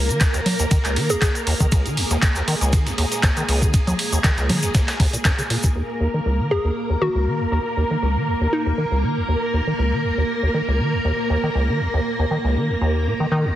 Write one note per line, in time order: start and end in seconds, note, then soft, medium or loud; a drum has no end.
0.00 0.11 C#2 medium
0.00 5.74 A#3 medium
0.00 1.75 A#4 medium
0.09 0.22 D#3 medium
0.09 closed hi-hat soft
0.09 shaker medium
0.20 0.28 D#2 medium
0.20 kick loud
0.20 snare loud
0.20 clap loud
0.20 closed hi-hat medium
0.20 ride medium
0.20 shaker medium
0.34 0.41 D#2 medium
0.34 snare soft
0.34 closed hi-hat soft
0.34 shaker soft
0.46 open hi-hat loud
0.46 ride medium
0.46 low conga medium
0.59 0.66 D#2 medium
0.59 snare medium
0.59 closed hi-hat soft
0.59 shaker medium
0.71 0.79 D#3 medium
0.71 kick loud
0.71 closed hi-hat medium
0.71 ride medium
0.71 shaker medium
0.84 0.98 C#2 medium
0.84 snare soft
0.84 clap soft
0.84 closed hi-hat soft
0.84 shaker soft
0.96 1.11 D#3 medium
0.96 open hi-hat loud
0.96 ride medium
1.10 1.16 D#2 medium
1.10 1.17 G#4 medium
1.10 closed hi-hat soft
1.10 shaker medium
1.21 1.29 D#2 medium
1.21 1.30 G#4 medium
1.21 kick loud
1.21 snare loud
1.21 clap loud
1.21 closed hi-hat medium
1.21 ride medium
1.21 shaker medium
1.35 closed hi-hat soft
1.35 shaker soft
1.47 1.54 D#2 medium
1.47 open hi-hat loud
1.47 ride medium
1.60 1.67 D#3 medium
1.60 kick medium
1.60 closed hi-hat soft
1.60 shaker medium
1.72 1.87 C#2 medium
1.72 5.78 G#4 medium
1.72 kick loud
1.72 closed hi-hat medium
1.72 ride medium
1.72 shaker medium
1.86 1.99 D#3 medium
1.86 closed hi-hat soft
1.86 shaker soft
1.97 2.05 D#2 medium
1.97 open hi-hat medium
1.97 open hi-hat loud
2.11 2.17 D#2 medium
2.11 snare medium
2.11 closed hi-hat soft
2.11 shaker medium
2.22 kick loud
2.22 snare loud
2.22 clap loud
2.22 closed hi-hat medium
2.22 ride medium
2.22 shaker medium
2.36 2.42 D#2 medium
2.36 snare soft
2.36 closed hi-hat soft
2.36 shaker soft
2.48 2.55 D#3 medium
2.48 open hi-hat loud
2.48 ride medium
2.61 2.75 C#2 medium
2.61 snare soft
2.61 closed hi-hat soft
2.61 shaker medium
2.73 2.88 D#3 medium
2.73 kick loud
2.73 closed hi-hat loud
2.73 ride medium
2.73 shaker medium
2.86 2.93 D#2 medium
2.86 snare soft
2.86 closed hi-hat soft
2.86 shaker soft
2.98 3.06 D#2 medium
2.98 open hi-hat loud
2.98 ride medium
3.12 snare medium
3.12 closed hi-hat soft
3.12 shaker medium
3.23 3.31 D#2 medium
3.23 kick loud
3.23 snare loud
3.23 clap loud
3.23 closed hi-hat medium
3.23 ride medium
3.23 shaker medium
3.37 3.43 D#3 medium
3.37 closed hi-hat soft
3.37 shaker soft
3.49 3.64 C#2 medium
3.49 snare medium
3.49 open hi-hat loud
3.49 ride medium
3.62 3.75 D#3 medium
3.62 kick medium
3.62 closed hi-hat soft
3.62 shaker medium
3.74 3.81 D#2 medium
3.74 kick loud
3.74 closed hi-hat loud
3.74 ride medium
3.74 shaker medium
3.87 3.94 D#2 medium
3.87 closed hi-hat soft
3.87 low conga medium
3.87 shaker soft
3.99 open hi-hat loud
3.99 ride medium
4.12 4.19 D#2 medium
4.12 closed hi-hat soft
4.12 shaker medium
4.24 4.32 D#3 medium
4.24 kick loud
4.24 snare loud
4.24 clap loud
4.24 closed hi-hat loud
4.24 ride medium
4.24 shaker medium
4.37 4.51 C#2 medium
4.37 snare soft
4.37 closed hi-hat soft
4.37 shaker soft
4.49 4.64 D#3 medium
4.49 open hi-hat loud
4.49 ride medium
4.49 low conga medium
4.63 4.69 D#2 medium
4.63 snare medium
4.63 closed hi-hat soft
4.63 shaker medium
4.75 4.82 D#2 medium
4.75 kick loud
4.75 snare loud
4.75 closed hi-hat loud
4.75 ride medium
4.75 shaker medium
4.88 snare loud
4.88 clap soft
4.88 closed hi-hat soft
4.88 ride medium
4.88 shaker soft
5.00 5.07 D#2 loud
5.00 kick medium
5.00 open hi-hat loud
5.00 ride medium
5.13 5.17 A#2 medium
5.13 closed hi-hat soft
5.13 shaker medium
5.25 5.32 F#2 medium
5.25 kick loud
5.25 snare loud
5.25 clap loud
5.25 closed hi-hat loud
5.25 ride medium
5.25 shaker medium
5.39 5.42 C#3 medium
5.39 closed hi-hat soft
5.39 shaker soft
5.50 5.58 A#2 medium
5.50 open hi-hat loud
5.50 ride medium
5.63 5.70 D#2 medium
5.63 kick medium
5.63 closed hi-hat soft
5.63 shaker medium
5.75 5.83 D#2 medium
5.75 13.55 A#3 medium
5.75 13.55 A#4 medium
6.01 6.08 D#2 medium
6.14 6.21 D#3 medium
6.26 6.41 C#2 medium
6.39 6.53 D#3 medium
6.51 6.58 D#2 medium
6.51 6.65 G#4 medium
6.65 6.71 D#2 medium
6.90 6.96 D#2 medium
7.01 7.09 D#3 medium
7.01 7.16 F#4 medium
7.15 7.28 C#2 medium
7.27 7.42 D#3 medium
7.40 7.47 D#2 medium
7.52 7.59 D#2 medium
7.77 7.85 D#2 medium
7.91 7.97 D#3 medium
8.02 8.18 C#2 medium
8.16 8.29 D#3 medium
8.28 8.35 D#2 medium
8.41 8.47 D#2 medium
8.53 8.91 D#4 medium
8.66 8.73 D#2 medium
8.78 8.85 D#3 medium
8.91 9.05 C#2 medium
9.03 9.18 D#3 medium
9.17 9.23 D#2 medium
9.28 9.36 D#2 medium
9.54 9.61 D#2 medium
9.67 9.74 D#3 medium
9.79 9.94 C#2 medium
9.92 10.06 D#3 medium
10.04 10.12 D#2 medium
10.18 10.24 D#2 medium
10.43 10.49 D#2 medium
10.54 10.62 D#3 medium
10.68 10.81 C#2 medium
10.80 10.95 D#3 medium
10.93 11.00 D#2 medium
11.05 11.12 D#2 medium
11.30 11.37 D#2 medium
11.43 11.50 D#3 medium
11.55 11.70 C#2 medium
11.69 11.82 D#3 medium
11.80 11.88 D#2 medium
11.94 12.00 D#2 medium
12.19 12.26 D#2 medium
12.31 12.38 D#3 medium
12.44 12.58 C#2 medium
12.56 12.71 D#3 medium
12.70 12.76 D#2 medium
12.81 13.08 D#2 medium
13.07 13.14 A#2 loud
13.20 13.27 D#3 medium
13.32 13.47 D#3 loud
13.45 13.52 D#2 loud